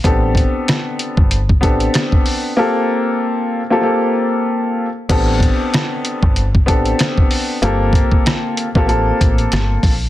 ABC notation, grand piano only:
X:1
M:4/4
L:1/16
Q:"Swing 16ths" 1/4=95
K:Aphr
V:1 name="Grand piano"
[=B,CDGA]8 z2 [B,CDGA]6 | [B,CFGA]6 z [B,CFGA] [B,CFGA]6 z2 | [=B,CDGA]8 z2 [B,CDGA]6 | [B,CFGA]6 z [B,CFGA] [B,CFGA]6 z2 |]